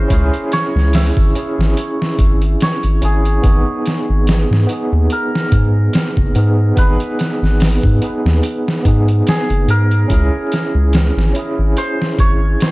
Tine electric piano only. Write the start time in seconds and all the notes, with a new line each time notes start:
Already playing: C#4 E4 G#4
0.08 C#4 E4
0.13 G#4
1.36 C#4 E4 G#4
3.02 C#4 E4 G#4
3.42 B3 D#4
3.48 G#4
4.67 B3 D#4
4.72 G#4
6.36 B3 D#4 G#4
6.75 B3 D#4
6.81 G#4
8.01 B3 D#4 G#4
8.83 B3 D#4
8.88 G#4
10.08 C#4 E4
10.14 G#4
11.34 C#4 E4
11.39 G#4